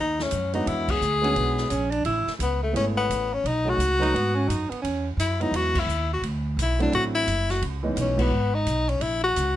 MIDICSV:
0, 0, Header, 1, 7, 480
1, 0, Start_track
1, 0, Tempo, 347826
1, 911, Time_signature, 4, 2, 24, 8
1, 13197, End_track
2, 0, Start_track
2, 0, Title_t, "Tenor saxophone"
2, 0, Program_c, 0, 66
2, 5, Note_on_c, 0, 63, 82
2, 315, Note_on_c, 0, 61, 81
2, 335, Note_off_c, 0, 63, 0
2, 747, Note_off_c, 0, 61, 0
2, 756, Note_on_c, 0, 63, 81
2, 935, Note_on_c, 0, 64, 90
2, 956, Note_off_c, 0, 63, 0
2, 1254, Note_on_c, 0, 68, 102
2, 1275, Note_off_c, 0, 64, 0
2, 2673, Note_off_c, 0, 68, 0
2, 3345, Note_on_c, 0, 59, 74
2, 3610, Note_off_c, 0, 59, 0
2, 3629, Note_on_c, 0, 57, 74
2, 3787, Note_off_c, 0, 57, 0
2, 3817, Note_on_c, 0, 61, 81
2, 3947, Note_off_c, 0, 61, 0
2, 4100, Note_on_c, 0, 59, 84
2, 4606, Note_on_c, 0, 61, 86
2, 4627, Note_off_c, 0, 59, 0
2, 4788, Note_on_c, 0, 63, 89
2, 4808, Note_off_c, 0, 61, 0
2, 5094, Note_on_c, 0, 66, 108
2, 5115, Note_off_c, 0, 63, 0
2, 6512, Note_off_c, 0, 66, 0
2, 7175, Note_on_c, 0, 64, 83
2, 7472, Note_on_c, 0, 63, 86
2, 7492, Note_off_c, 0, 64, 0
2, 7670, Note_on_c, 0, 66, 98
2, 7691, Note_off_c, 0, 63, 0
2, 7995, Note_on_c, 0, 64, 91
2, 8016, Note_off_c, 0, 66, 0
2, 8443, Note_off_c, 0, 64, 0
2, 8466, Note_on_c, 0, 66, 77
2, 8605, Note_off_c, 0, 66, 0
2, 9143, Note_on_c, 0, 64, 81
2, 9389, Note_off_c, 0, 64, 0
2, 9412, Note_on_c, 0, 62, 83
2, 9558, Note_off_c, 0, 62, 0
2, 9589, Note_on_c, 0, 66, 100
2, 9716, Note_off_c, 0, 66, 0
2, 9866, Note_on_c, 0, 64, 97
2, 10358, Note_on_c, 0, 66, 81
2, 10379, Note_off_c, 0, 64, 0
2, 10522, Note_off_c, 0, 66, 0
2, 11054, Note_on_c, 0, 61, 79
2, 11339, Note_on_c, 0, 59, 81
2, 11359, Note_off_c, 0, 61, 0
2, 11793, Note_on_c, 0, 63, 89
2, 11814, Note_off_c, 0, 59, 0
2, 12273, Note_on_c, 0, 61, 80
2, 12293, Note_off_c, 0, 63, 0
2, 12445, Note_on_c, 0, 64, 89
2, 12465, Note_off_c, 0, 61, 0
2, 12740, Note_off_c, 0, 64, 0
2, 12751, Note_on_c, 0, 66, 98
2, 13197, Note_off_c, 0, 66, 0
2, 13197, End_track
3, 0, Start_track
3, 0, Title_t, "Alto saxophone"
3, 0, Program_c, 1, 65
3, 1710, Note_on_c, 1, 61, 72
3, 1898, Note_on_c, 1, 59, 72
3, 1919, Note_off_c, 1, 61, 0
3, 2339, Note_off_c, 1, 59, 0
3, 2347, Note_on_c, 1, 61, 82
3, 2627, Note_on_c, 1, 62, 89
3, 2648, Note_off_c, 1, 61, 0
3, 2817, Note_off_c, 1, 62, 0
3, 2839, Note_on_c, 1, 64, 90
3, 3198, Note_off_c, 1, 64, 0
3, 5544, Note_on_c, 1, 63, 93
3, 5720, Note_on_c, 1, 59, 81
3, 5741, Note_off_c, 1, 63, 0
3, 6008, Note_on_c, 1, 61, 80
3, 6029, Note_off_c, 1, 59, 0
3, 6180, Note_on_c, 1, 63, 84
3, 6201, Note_off_c, 1, 61, 0
3, 6483, Note_on_c, 1, 59, 69
3, 6504, Note_off_c, 1, 63, 0
3, 6640, Note_off_c, 1, 59, 0
3, 6649, Note_on_c, 1, 61, 77
3, 7022, Note_off_c, 1, 61, 0
3, 13197, End_track
4, 0, Start_track
4, 0, Title_t, "Grand piano"
4, 0, Program_c, 2, 0
4, 738, Note_on_c, 2, 56, 70
4, 738, Note_on_c, 2, 59, 63
4, 747, Note_on_c, 2, 61, 64
4, 753, Note_on_c, 2, 62, 60
4, 763, Note_on_c, 2, 66, 79
4, 1357, Note_off_c, 2, 59, 0
4, 1358, Note_off_c, 2, 56, 0
4, 1362, Note_off_c, 2, 61, 0
4, 1365, Note_off_c, 2, 62, 0
4, 1370, Note_off_c, 2, 66, 0
4, 1675, Note_on_c, 2, 56, 65
4, 1680, Note_on_c, 2, 59, 60
4, 1683, Note_on_c, 2, 61, 64
4, 1695, Note_on_c, 2, 62, 61
4, 1701, Note_on_c, 2, 66, 74
4, 2306, Note_off_c, 2, 56, 0
4, 2308, Note_off_c, 2, 59, 0
4, 2310, Note_off_c, 2, 61, 0
4, 2316, Note_off_c, 2, 62, 0
4, 2319, Note_off_c, 2, 66, 0
4, 3763, Note_on_c, 2, 57, 63
4, 3769, Note_on_c, 2, 59, 57
4, 3770, Note_on_c, 2, 61, 59
4, 3782, Note_on_c, 2, 64, 62
4, 3783, Note_on_c, 2, 68, 73
4, 4498, Note_off_c, 2, 57, 0
4, 4501, Note_off_c, 2, 59, 0
4, 4502, Note_off_c, 2, 61, 0
4, 4507, Note_off_c, 2, 64, 0
4, 4508, Note_off_c, 2, 68, 0
4, 5031, Note_on_c, 2, 54, 67
4, 5039, Note_on_c, 2, 57, 56
4, 5039, Note_on_c, 2, 61, 59
4, 5053, Note_on_c, 2, 63, 58
4, 5061, Note_on_c, 2, 68, 71
4, 5201, Note_off_c, 2, 54, 0
4, 5205, Note_off_c, 2, 57, 0
4, 5205, Note_off_c, 2, 61, 0
4, 5212, Note_off_c, 2, 63, 0
4, 5216, Note_off_c, 2, 68, 0
4, 5501, Note_on_c, 2, 54, 69
4, 5510, Note_on_c, 2, 57, 66
4, 5519, Note_on_c, 2, 61, 64
4, 5520, Note_on_c, 2, 63, 66
4, 5520, Note_on_c, 2, 71, 73
4, 5676, Note_off_c, 2, 54, 0
4, 5680, Note_off_c, 2, 57, 0
4, 5685, Note_off_c, 2, 61, 0
4, 5686, Note_off_c, 2, 63, 0
4, 5686, Note_off_c, 2, 71, 0
4, 7445, Note_on_c, 2, 54, 57
4, 7457, Note_on_c, 2, 56, 54
4, 7457, Note_on_c, 2, 59, 54
4, 7466, Note_on_c, 2, 61, 53
4, 7477, Note_on_c, 2, 64, 62
4, 8070, Note_off_c, 2, 54, 0
4, 8076, Note_off_c, 2, 56, 0
4, 8076, Note_off_c, 2, 59, 0
4, 8081, Note_off_c, 2, 61, 0
4, 8086, Note_off_c, 2, 64, 0
4, 9368, Note_on_c, 2, 54, 73
4, 9373, Note_on_c, 2, 57, 69
4, 9380, Note_on_c, 2, 60, 67
4, 9386, Note_on_c, 2, 62, 67
4, 9399, Note_on_c, 2, 64, 81
4, 9992, Note_off_c, 2, 54, 0
4, 9994, Note_off_c, 2, 57, 0
4, 9998, Note_off_c, 2, 60, 0
4, 10001, Note_off_c, 2, 62, 0
4, 10007, Note_off_c, 2, 64, 0
4, 10802, Note_on_c, 2, 52, 69
4, 10812, Note_on_c, 2, 59, 67
4, 10814, Note_on_c, 2, 56, 66
4, 10823, Note_on_c, 2, 61, 66
4, 10824, Note_on_c, 2, 63, 77
4, 11255, Note_off_c, 2, 52, 0
4, 11256, Note_off_c, 2, 56, 0
4, 11262, Note_off_c, 2, 59, 0
4, 11262, Note_off_c, 2, 61, 0
4, 11268, Note_off_c, 2, 63, 0
4, 11276, Note_on_c, 2, 52, 70
4, 11277, Note_on_c, 2, 56, 64
4, 11283, Note_on_c, 2, 61, 69
4, 11286, Note_on_c, 2, 59, 70
4, 11300, Note_on_c, 2, 66, 79
4, 11444, Note_off_c, 2, 52, 0
4, 11444, Note_off_c, 2, 56, 0
4, 11447, Note_off_c, 2, 61, 0
4, 11449, Note_off_c, 2, 59, 0
4, 11456, Note_off_c, 2, 66, 0
4, 13197, End_track
5, 0, Start_track
5, 0, Title_t, "Upright bass"
5, 0, Program_c, 3, 32
5, 0, Note_on_c, 3, 39, 78
5, 417, Note_off_c, 3, 39, 0
5, 441, Note_on_c, 3, 42, 77
5, 901, Note_off_c, 3, 42, 0
5, 915, Note_on_c, 3, 40, 77
5, 1378, Note_off_c, 3, 40, 0
5, 1389, Note_on_c, 3, 38, 81
5, 1855, Note_off_c, 3, 38, 0
5, 1871, Note_on_c, 3, 35, 82
5, 2336, Note_off_c, 3, 35, 0
5, 2347, Note_on_c, 3, 34, 78
5, 2814, Note_off_c, 3, 34, 0
5, 2828, Note_on_c, 3, 33, 82
5, 3110, Note_off_c, 3, 33, 0
5, 3299, Note_on_c, 3, 37, 83
5, 3770, Note_off_c, 3, 37, 0
5, 3787, Note_on_c, 3, 32, 76
5, 4254, Note_off_c, 3, 32, 0
5, 4263, Note_on_c, 3, 33, 80
5, 4732, Note_off_c, 3, 33, 0
5, 4745, Note_on_c, 3, 35, 80
5, 5205, Note_off_c, 3, 35, 0
5, 5213, Note_on_c, 3, 37, 84
5, 5687, Note_off_c, 3, 37, 0
5, 5705, Note_on_c, 3, 44, 75
5, 6173, Note_off_c, 3, 44, 0
5, 6189, Note_on_c, 3, 42, 80
5, 6470, Note_off_c, 3, 42, 0
5, 6675, Note_on_c, 3, 40, 77
5, 7123, Note_off_c, 3, 40, 0
5, 7132, Note_on_c, 3, 42, 83
5, 7598, Note_off_c, 3, 42, 0
5, 7606, Note_on_c, 3, 40, 79
5, 8074, Note_off_c, 3, 40, 0
5, 8083, Note_on_c, 3, 39, 80
5, 8561, Note_off_c, 3, 39, 0
5, 8577, Note_on_c, 3, 38, 79
5, 9048, Note_off_c, 3, 38, 0
5, 9063, Note_on_c, 3, 35, 78
5, 9531, Note_off_c, 3, 35, 0
5, 9556, Note_on_c, 3, 33, 88
5, 10018, Note_off_c, 3, 33, 0
5, 10034, Note_on_c, 3, 30, 86
5, 10497, Note_off_c, 3, 30, 0
5, 10512, Note_on_c, 3, 37, 86
5, 10973, Note_off_c, 3, 37, 0
5, 10982, Note_on_c, 3, 35, 90
5, 11447, Note_off_c, 3, 35, 0
5, 11455, Note_on_c, 3, 32, 85
5, 11928, Note_off_c, 3, 32, 0
5, 11948, Note_on_c, 3, 35, 77
5, 12409, Note_off_c, 3, 35, 0
5, 12418, Note_on_c, 3, 34, 75
5, 12890, Note_off_c, 3, 34, 0
5, 12920, Note_on_c, 3, 37, 81
5, 13197, Note_off_c, 3, 37, 0
5, 13197, End_track
6, 0, Start_track
6, 0, Title_t, "Muted upright bass strokes"
6, 3135, Note_on_c, 9, 29, 36
6, 3273, Note_off_c, 9, 29, 0
6, 6495, Note_on_c, 9, 29, 37
6, 6633, Note_off_c, 9, 29, 0
6, 13197, End_track
7, 0, Start_track
7, 0, Title_t, "Drums"
7, 267, Note_on_c, 9, 38, 55
7, 405, Note_off_c, 9, 38, 0
7, 426, Note_on_c, 9, 44, 55
7, 426, Note_on_c, 9, 51, 65
7, 564, Note_off_c, 9, 44, 0
7, 564, Note_off_c, 9, 51, 0
7, 737, Note_on_c, 9, 51, 41
7, 875, Note_off_c, 9, 51, 0
7, 925, Note_on_c, 9, 51, 59
7, 1063, Note_off_c, 9, 51, 0
7, 1219, Note_on_c, 9, 36, 77
7, 1221, Note_on_c, 9, 49, 70
7, 1357, Note_off_c, 9, 36, 0
7, 1359, Note_off_c, 9, 49, 0
7, 1400, Note_on_c, 9, 44, 49
7, 1538, Note_off_c, 9, 44, 0
7, 1712, Note_on_c, 9, 51, 42
7, 1850, Note_off_c, 9, 51, 0
7, 1877, Note_on_c, 9, 51, 56
7, 2015, Note_off_c, 9, 51, 0
7, 2173, Note_on_c, 9, 38, 36
7, 2311, Note_off_c, 9, 38, 0
7, 2348, Note_on_c, 9, 44, 50
7, 2348, Note_on_c, 9, 51, 58
7, 2486, Note_off_c, 9, 44, 0
7, 2486, Note_off_c, 9, 51, 0
7, 2651, Note_on_c, 9, 51, 43
7, 2789, Note_off_c, 9, 51, 0
7, 2824, Note_on_c, 9, 51, 58
7, 2962, Note_off_c, 9, 51, 0
7, 3135, Note_on_c, 9, 38, 33
7, 3273, Note_off_c, 9, 38, 0
7, 3311, Note_on_c, 9, 44, 59
7, 3311, Note_on_c, 9, 51, 65
7, 3449, Note_off_c, 9, 44, 0
7, 3449, Note_off_c, 9, 51, 0
7, 3806, Note_on_c, 9, 51, 61
7, 3944, Note_off_c, 9, 51, 0
7, 4285, Note_on_c, 9, 44, 47
7, 4285, Note_on_c, 9, 51, 61
7, 4423, Note_off_c, 9, 44, 0
7, 4423, Note_off_c, 9, 51, 0
7, 4769, Note_on_c, 9, 51, 53
7, 4907, Note_off_c, 9, 51, 0
7, 5242, Note_on_c, 9, 44, 59
7, 5242, Note_on_c, 9, 51, 61
7, 5380, Note_off_c, 9, 44, 0
7, 5380, Note_off_c, 9, 51, 0
7, 5560, Note_on_c, 9, 51, 43
7, 5698, Note_off_c, 9, 51, 0
7, 5737, Note_on_c, 9, 51, 56
7, 5875, Note_off_c, 9, 51, 0
7, 6209, Note_on_c, 9, 44, 50
7, 6209, Note_on_c, 9, 51, 64
7, 6347, Note_off_c, 9, 44, 0
7, 6347, Note_off_c, 9, 51, 0
7, 6510, Note_on_c, 9, 51, 43
7, 6648, Note_off_c, 9, 51, 0
7, 6686, Note_on_c, 9, 51, 63
7, 6824, Note_off_c, 9, 51, 0
7, 7169, Note_on_c, 9, 44, 56
7, 7169, Note_on_c, 9, 51, 65
7, 7307, Note_off_c, 9, 44, 0
7, 7307, Note_off_c, 9, 51, 0
7, 7463, Note_on_c, 9, 51, 40
7, 7601, Note_off_c, 9, 51, 0
7, 7641, Note_on_c, 9, 51, 59
7, 7779, Note_off_c, 9, 51, 0
7, 7937, Note_on_c, 9, 36, 90
7, 7938, Note_on_c, 9, 49, 78
7, 8075, Note_off_c, 9, 36, 0
7, 8076, Note_off_c, 9, 49, 0
7, 8124, Note_on_c, 9, 44, 55
7, 8262, Note_off_c, 9, 44, 0
7, 8603, Note_on_c, 9, 51, 58
7, 8741, Note_off_c, 9, 51, 0
7, 9090, Note_on_c, 9, 44, 54
7, 9090, Note_on_c, 9, 51, 62
7, 9228, Note_off_c, 9, 44, 0
7, 9228, Note_off_c, 9, 51, 0
7, 9386, Note_on_c, 9, 51, 43
7, 9524, Note_off_c, 9, 51, 0
7, 9566, Note_on_c, 9, 51, 53
7, 9704, Note_off_c, 9, 51, 0
7, 10042, Note_on_c, 9, 44, 51
7, 10042, Note_on_c, 9, 51, 61
7, 10180, Note_off_c, 9, 44, 0
7, 10180, Note_off_c, 9, 51, 0
7, 10348, Note_on_c, 9, 38, 42
7, 10349, Note_on_c, 9, 51, 45
7, 10486, Note_off_c, 9, 38, 0
7, 10487, Note_off_c, 9, 51, 0
7, 10521, Note_on_c, 9, 51, 58
7, 10659, Note_off_c, 9, 51, 0
7, 10994, Note_on_c, 9, 44, 53
7, 10994, Note_on_c, 9, 51, 63
7, 11132, Note_off_c, 9, 44, 0
7, 11132, Note_off_c, 9, 51, 0
7, 11298, Note_on_c, 9, 49, 71
7, 11299, Note_on_c, 9, 36, 77
7, 11436, Note_off_c, 9, 49, 0
7, 11437, Note_off_c, 9, 36, 0
7, 11958, Note_on_c, 9, 44, 59
7, 11958, Note_on_c, 9, 51, 61
7, 12096, Note_off_c, 9, 44, 0
7, 12096, Note_off_c, 9, 51, 0
7, 12265, Note_on_c, 9, 51, 42
7, 12403, Note_off_c, 9, 51, 0
7, 12433, Note_on_c, 9, 51, 56
7, 12571, Note_off_c, 9, 51, 0
7, 12920, Note_on_c, 9, 44, 60
7, 12920, Note_on_c, 9, 51, 63
7, 13058, Note_off_c, 9, 44, 0
7, 13058, Note_off_c, 9, 51, 0
7, 13197, End_track
0, 0, End_of_file